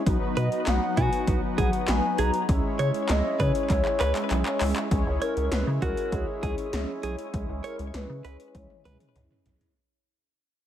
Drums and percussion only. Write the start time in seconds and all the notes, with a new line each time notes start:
0.06 kick, closed hi-hat
0.37 closed hi-hat
0.52 closed hi-hat
0.67 snare, clap, closed hi-hat
0.97 kick, closed hi-hat
1.13 closed hi-hat
1.27 kick, closed hi-hat
1.58 kick, closed hi-hat
1.73 closed hi-hat
1.88 snare, clap, closed hi-hat
2.18 closed hi-hat
2.34 closed hi-hat
2.49 kick, closed hi-hat
2.79 closed hi-hat
2.94 closed hi-hat
3.09 snare, clap, closed hi-hat
3.40 kick, closed hi-hat
3.55 closed hi-hat
3.70 kick, clap, closed hi-hat
3.85 clap
4.00 clap, closed hi-hat
4.16 clap, closed hi-hat
4.31 clap, closed hi-hat
4.46 clap
4.61 clap, open hi-hat
4.76 clap, closed hi-hat
4.91 kick, closed hi-hat
5.22 closed hi-hat
5.37 closed hi-hat
5.52 snare, closed hi-hat
5.82 kick, closed hi-hat
5.97 closed hi-hat
6.12 kick, closed hi-hat
6.43 kick, closed hi-hat
6.58 closed hi-hat
6.73 snare, closed hi-hat
7.03 closed hi-hat
7.19 closed hi-hat
7.34 kick, closed hi-hat
7.64 closed hi-hat
7.79 closed hi-hat
7.94 snare, closed hi-hat
8.25 closed hi-hat
8.40 closed hi-hat
8.55 kick, closed hi-hat, high tom
8.70 high tom
8.85 closed hi-hat, mid tom
9.00 closed hi-hat, mid tom
9.16 closed hi-hat, mid tom
9.31 mid tom
9.46 closed hi-hat, floor tom
9.61 closed hi-hat, floor tom